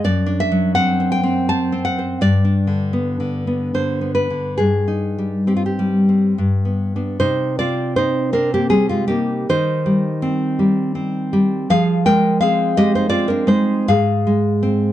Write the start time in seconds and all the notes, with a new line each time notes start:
0.04 F#2 D5
0.26 D4
0.40 E5
0.52 F#3
0.75 C4 F#5
1.00 C5
1.12 G5
1.23 C4
1.49 C5 A5
1.72 C4
1.85 F#5
1.98 C5
2.21 G2 D5
2.45 D4
2.67 D3
2.93 B3
3.20 D3
3.47 B3
3.74 D3 C5
4.01 B3
4.15 B4
4.30 D3
4.58 G2 G#4
4.88 D#4
5.18 G3
5.47 C4 G4
5.57 F4
5.66 G4
5.79 G3
6.09 C4
6.38 G2
6.65 B3
6.96 B3 D4
7.20 C3 D#4 C5
7.59 C4 F4 D5
7.96 D#4 C5
8.33 C4 D4 A#4
8.54 A#3 G4
8.69 G3 C4 G#4
8.89 G#3 F4
9.08 A#3 D#4 G4
9.49 D#3 D#4 C5
9.86 G3
10.22 C4
10.59 G3
10.95 C4
11.33 G3
11.70 F3 G#4 F5
12.06 G#3 A#4 G5
12.41 C4 G#4 F5
12.77 G#3 G4 D#5
12.95 D#4 C5
13.09 C4 F4 D5
13.28 D4 A#4
13.47 G#3 D#4 C5
13.88 G#2 G#4 F5
14.27 G#3
14.63 C4